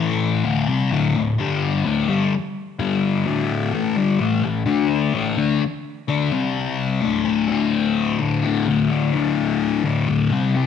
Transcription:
0.00 A2 E3 A3
0.45 D2 A2 D3
0.68 C3 G3 C4
0.92 D2 A2 D3
1.15 D2 A2
1.38 G2 D3 G3
1.85 D2 A2 D3
2.09 G2 D3 G3
2.79 G2 D3 G3
3.26 D2 A2 D3
3.73 A2 E3 A3
3.96 G2 D3 G3
4.20 A2 E3 A3
4.43 A2 E3
4.66 D3 A3 D4
5.13 A2 E3 A3
5.37 D3 A3 D4
6.08 D3 A3 D4
6.31 C3 G3 C4
7.02 D2 A2 D3
7.25 A2 D3
7.49 D2 A2 D3
8.19 A2 D3
8.43 D2 A2 D3
8.66 D2 A2 D3
8.90 A2 D3
9.13 D2 A2 D3
9.84 A2 D3
10.07 D2 A2 D3
10.31 C3 G3 C4
10.54 G3 C4

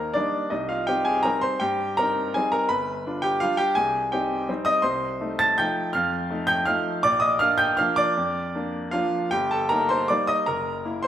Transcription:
Already playing: D#2 A#3 D#4 A#4 C5 A#5 C6
0.14 G3 A#3 D4 D#4 D5
0.50 C2 D#4 D#5
0.69 F4 F5
0.87 C4 D#4 G4 G5
1.05 G#4 G#5
1.23 G3 C4 D#4 A#4 A#5
1.41 C5 C6
1.60 G2 G4 G5
1.97 C4 D#4 A#4 A#5
2.34 G3 C4 D#4 G#4 G#5
2.52 A#4 A#5
2.69 G1 B4 B5
3.07 D4 F4
3.22 G4 G5
3.40 G3 D4 F4 F5
3.57 G4 G5
3.75 C2 G#4 G#5
4.12 C4 D#4 G4 G5
4.48 G3 C4 D#4
4.65 D#5 D#6
4.82 C2 C5 C6
5.21 A3 D#4
5.39 A5 A6
5.58 F3 A3 D#4 G5 G6
5.93 F2 F5 F6
6.30 A3 D#4
6.47 G5 G6
6.66 F3 A3 D#4 F5 F6
7.03 A#1 D5 D6
7.20 D#5 D#6
7.39 A#3 D4 F5 F6
7.58 G5 G6
7.77 F3 A#3 D4 F5 F6
7.96 D5 D6
8.17 F2
8.55 A#3 D4
8.91 F3 A#3 D4 F4 F5
9.31 G1 G4 G5
9.51 A4 A5
9.69 A#3 D#4 A#4 A#5
9.89 C5 C6
10.08 G3 A#3 D#4 D5 D6
10.27 D#5 D#6
10.46 F#1 A#4 A#5
10.85 A#3 E4
11.03 C5 C6

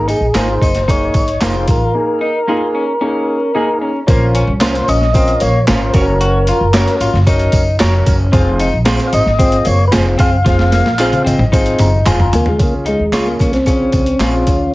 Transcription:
Already playing: G#1 A#3 D#4 G#4
0.08 D#4 G#4, closed hi-hat, tambourine
0.20 A#1
0.34 G#1 A#3 D#4 F4 G#4 C5, snare, clap, closed hi-hat, tambourine
0.61 F#1 D#4, kick, closed hi-hat, tambourine
0.75 snare, closed hi-hat
0.87 A#3 D#4 G#4 C#5, kick, closed hi-hat, tambourine
1.14 G#1, kick, closed hi-hat, tambourine
1.28 closed hi-hat
1.41 F1 A#3 D#4 F4 G#4 C5, snare, clap, closed hi-hat, tambourine
1.68 A1 A#4, kick, closed hi-hat, tambourine
1.94 A#3 D#4 G#4
2.21 D#4
2.47 A#3 D#4 F4 G#4
2.75 C#4
3.01 A#3 C#4 D#4 G#4
3.55 A#3 D#4 G#4 G#5
3.81 C#4 A#5
4.07 A#1 A#3 C#4 F4 A#4 C5, kick, closed hi-hat, tambourine
4.35 C#4, closed hi-hat
4.47 C2
4.60 C#4 F4 A#4 C5, snare, clap, closed hi-hat, tambourine
4.75 snare, closed hi-hat
4.88 A#1 C#4 D#5, closed hi-hat, tambourine
5.01 snare
5.13 C4 C#4 F4 A#4 C5, kick, closed hi-hat, tambourine
5.28 closed hi-hat
5.40 A#1 A#3 C#5, closed hi-hat, tambourine
5.67 G#1 C#4 F4 A#4 C5, snare, clap, closed hi-hat, tambourine
5.93 F#1 C#4 F#4 A#4 C5 C#5, kick, closed hi-hat, tambourine
6.02 C#5
6.21 F#4, closed hi-hat
6.47 F4, closed hi-hat, tambourine
6.61 F#1
6.73 C#4 F#4 A#4 C#5, snare, clap, closed hi-hat, tambourine
6.88 snare, closed hi-hat
7.00 G#1 F4, closed hi-hat, tambourine
7.13 F#1, snare
7.27 C#4 D#4 F#4 A#4 C#5, kick, closed hi-hat, tambourine
7.39 closed hi-hat
7.52 F#1, kick, closed hi-hat, tambourine
7.79 F1 C#4 F#4 A#4 C#5, snare, clap, closed hi-hat, tambourine
8.06 F#1, kick, closed hi-hat, tambourine
8.32 F1 C4 F4 G#4 C5, kick, closed hi-hat, tambourine
8.59 D#4, closed hi-hat, tambourine
8.73 A#1
8.85 C4 F4 G#4 C5, snare, clap, closed hi-hat, tambourine
9.00 snare, closed hi-hat
9.07 F5
9.13 G#1 D#4 D#5, closed hi-hat, tambourine
9.26 G#1, snare
9.38 C4 F4 G#4 C5, kick, closed hi-hat, tambourine
9.52 closed hi-hat
9.65 F#1 A#3 C#5, closed hi-hat, tambourine
9.88 F4 B4
9.92 F1 C4 F4 G#4 C5, snare, clap, closed hi-hat, tambourine
10.18 F#1 C4 F4 G#4 C5 F5, kick, closed hi-hat, tambourine
10.45 F1 C4 F4 G#4 C5, kick, snare, closed hi-hat, tambourine
10.59 snare
10.71 A#3, snare, closed hi-hat, tambourine
10.85 A#1, snare
10.99 C4 F4 G#4 C5, clap, closed hi-hat, tambourine
11.12 closed hi-hat, high tom
11.25 G#1 C4 D#5, closed hi-hat, high tom, tambourine
11.38 G#1, mid tom
11.52 C4 D#4 F4 G#4 C5 F5, kick, closed hi-hat, tambourine
11.66 closed hi-hat
11.79 F#1 A#5, closed hi-hat, mid tom, tambourine
12.06 F1 F4 G#4 C5 G#5 C6, clap, closed hi-hat, mid tom, tambourine
12.20 A#5, floor tom
12.32 D2 A#3 G#5, closed hi-hat, floor tom, tambourine
12.46 G#3 F5, floor tom
12.59 C#2 C#4 F4 G#4, kick, closed hi-hat, tambourine
12.63 A#3
12.86 G#3 D#4, closed hi-hat
12.99 D#2
13.12 C#2 C#4 F4 G#4 C#5, snare, clap, closed hi-hat, tambourine
13.27 A#3
13.39 C2 C#4, kick, closed hi-hat, tambourine
13.53 C4, snare, closed hi-hat
13.66 C#3 C#4 F4 G#4, kick, closed hi-hat, tambourine
13.92 C#2, kick, closed hi-hat, tambourine
14.06 closed hi-hat
14.19 A#1 C4 C#4 F4 G#4 C#5, snare, clap, closed hi-hat, tambourine
14.47 D2 C#4, kick, closed hi-hat, tambourine

